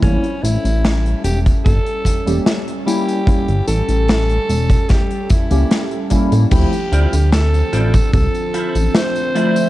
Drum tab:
CC |----------------|----------------|x---------------|
HH |xxxxxxxxxxxxxxxx|xxxxxxxxxxxxxxxx|xxxxxxxxxxxxxxxx|
TB |x-xxx-xxx-xxx-xx|x-xxx-xxx-xxx-xx|xx-xxx-xxx-xxx-x|
SD |----o-------o---|----o---o---o---|----o-------o---|
BD |o------oo-o-----|o------oo-o---o-|o------oo-------|